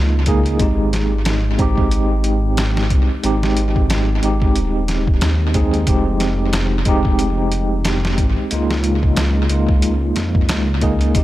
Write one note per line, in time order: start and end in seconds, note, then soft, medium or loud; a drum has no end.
0.00 0.57 C#2 medium
0.00 0.23 G#3 medium
0.00 0.24 A#3 medium
0.00 0.24 D#4 medium
0.00 0.25 F4 medium
0.26 0.57 G#3 medium
0.26 0.57 A#3 medium
0.26 0.57 D#4 medium
0.26 0.57 G#4 loud
0.26 kick loud
0.26 closed hi-hat medium
0.46 closed hi-hat soft
0.59 1.56 G#1 loud
0.59 1.56 G#3 medium
0.59 1.56 C4 medium
0.59 1.57 D#4 medium
0.59 1.57 G4 medium
0.59 kick loud
0.59 closed hi-hat medium
0.93 snare medium
0.93 closed hi-hat medium
1.25 snare loud
1.25 closed hi-hat medium
1.58 2.92 G#1 medium
1.58 3.20 G#3 medium
1.58 3.21 C4 medium
1.58 3.21 D#4 medium
1.58 3.22 G4 loud
1.58 kick loud
1.58 closed hi-hat medium
1.78 kick loud
1.91 closed hi-hat medium
2.24 closed hi-hat medium
2.57 snare loud
2.57 closed hi-hat medium
2.77 snare medium
2.90 3.08 C2 loud
2.90 kick medium
2.90 closed hi-hat medium
3.23 4.20 G#1 loud
3.23 4.19 G#3 medium
3.23 4.19 C4 medium
3.23 4.20 D#4 medium
3.23 4.20 G4 medium
3.23 closed hi-hat medium
3.43 snare medium
3.57 closed hi-hat medium
3.76 kick loud
3.90 snare loud
3.90 closed hi-hat medium
4.22 4.58 G#1 medium
4.22 5.51 G#3 medium
4.22 5.51 C4 medium
4.22 5.52 D#4 medium
4.22 5.53 G4 medium
4.22 closed hi-hat medium
4.42 kick medium
4.56 5.19 D#1 medium
4.56 closed hi-hat medium
4.88 snare soft
4.88 closed hi-hat medium
5.07 kick loud
5.21 5.85 D#2 loud
5.21 snare loud
5.21 closed hi-hat medium
5.54 5.84 G#3 medium
5.54 5.84 C4 medium
5.54 5.85 D#4 medium
5.54 5.85 G#4 loud
5.54 kick medium
5.54 closed hi-hat medium
5.74 closed hi-hat soft
5.87 6.84 F1 loud
5.87 6.83 G#3 medium
5.87 6.83 C4 medium
5.87 6.83 D#4 medium
5.87 6.84 G4 medium
5.87 kick loud
5.87 closed hi-hat medium
6.20 snare soft
6.20 closed hi-hat medium
6.53 snare loud
6.53 closed hi-hat medium
6.85 8.20 F1 medium
6.85 8.48 G#3 loud
6.85 8.48 C4 medium
6.85 8.49 D#4 medium
6.85 8.49 G4 loud
6.85 kick medium
6.85 closed hi-hat medium
7.05 kick medium
7.19 closed hi-hat medium
7.52 closed hi-hat medium
7.85 snare loud
7.85 closed hi-hat medium
8.05 snare medium
8.18 8.35 G#1 loud
8.18 kick medium
8.18 closed hi-hat medium
8.51 9.48 C#2 loud
8.51 9.47 G#3 medium
8.51 9.47 A#3 medium
8.51 9.48 D#4 medium
8.51 9.48 F4 medium
8.51 closed hi-hat medium
8.71 snare medium
8.84 closed hi-hat medium
9.03 kick medium
9.16 snare loud
9.16 closed hi-hat medium
9.50 10.13 C#2 medium
9.50 10.79 G#3 medium
9.50 10.79 A#3 medium
9.50 10.80 D#4 medium
9.50 10.80 F4 medium
9.50 closed hi-hat medium
9.69 kick medium
9.82 closed hi-hat medium
10.16 10.46 F2 medium
10.16 snare soft
10.16 closed hi-hat medium
10.35 kick medium
10.49 11.13 C#2 medium
10.49 snare loud
10.49 closed hi-hat medium
10.81 11.12 G#3 medium
10.81 11.12 A#3 medium
10.81 11.12 D#4 medium
10.81 11.12 G#4 medium
10.81 kick medium
10.81 closed hi-hat medium
11.01 closed hi-hat soft
11.15 11.24 G#1 loud
11.15 11.24 G#3 medium
11.15 11.24 C4 medium
11.15 11.24 D#4 medium
11.15 11.24 G4 medium
11.15 kick loud
11.15 closed hi-hat loud